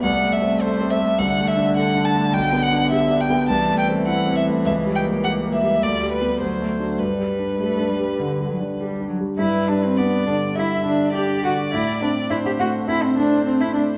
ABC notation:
X:1
M:4/4
L:1/16
Q:1/4=103
K:G
V:1 name="Violin"
f2 e2 c2 e2 f2 e2 f2 a2 | g2 f2 e2 g2 a2 g2 f2 e2 | e2 g2 f2 e2 d2 B2 c4 | B12 z4 |
B4 d4 e4 d4- | d4 c4 c8 |]
V:2 name="Cello"
A,8 D,8- | D,8 E,8- | E,8 G,4 F,4 | G,4 A,2 G,2 D,2 F,2 G,2 F,2 |
E2 D C B,2 D2 E2 D2 G2 F2 | E2 D2 E G F2 E C D2 C E D2 |]
V:3 name="Grand piano"
(3C,,2 A,2 C2 (3A2 C2 A,2 (3C,,2 A,2 D2 (3A2 D2 A,2 | (3B,,,2 B,2 D2 (3G2 D2 B,2 (3C,,2 A,2 C2 (3E2 C2 A,2 | (3^C,,2 G,2 ^A,2 (3G2 A,2 G,2 (3D,,2 G,2 [B,G]2 (3D,,2 =A,2 [DF]2 | (3G,,2 G,2 D2 (3G2 D2 G,2 (3D,2 G,2 D2 (3G2 D2 G,2 |
G,,2 G,2 D2 D,2 G,2 D,2 D2 D,2 | A,,2 C2 D2 A,2 C2 A,2 D2 A,2 |]